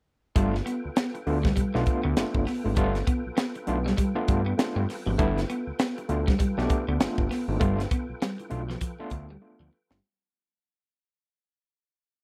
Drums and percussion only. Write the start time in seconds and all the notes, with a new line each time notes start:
0.36 kick, closed hi-hat
0.55 snare
0.67 closed hi-hat
0.96 snare, closed hi-hat
1.15 closed hi-hat
1.27 open hi-hat
1.45 kick, snare
1.57 kick, closed hi-hat
1.75 snare
1.86 kick, closed hi-hat
2.17 snare, closed hi-hat
2.34 kick
2.47 snare, open hi-hat
2.76 kick, closed hi-hat
2.95 snare, closed hi-hat
3.07 kick, closed hi-hat
3.37 snare, closed hi-hat
3.55 closed hi-hat
3.67 closed hi-hat
3.87 snare
3.98 kick, closed hi-hat
4.28 kick, closed hi-hat
4.59 snare, closed hi-hat
4.90 snare, open hi-hat
5.19 kick, closed hi-hat
5.38 snare, closed hi-hat
5.50 closed hi-hat
5.79 snare, closed hi-hat
5.98 closed hi-hat
6.09 closed hi-hat
6.28 kick, snare
6.40 kick, closed hi-hat
6.59 snare
6.70 kick, closed hi-hat
7.00 snare, closed hi-hat
7.18 kick
7.31 snare, open hi-hat
7.61 kick, closed hi-hat
7.80 snare, closed hi-hat
7.91 kick, closed hi-hat
8.22 snare, closed hi-hat
8.40 closed hi-hat
8.51 closed hi-hat
8.70 snare
8.81 kick, closed hi-hat
9.10 kick, closed hi-hat
9.91 snare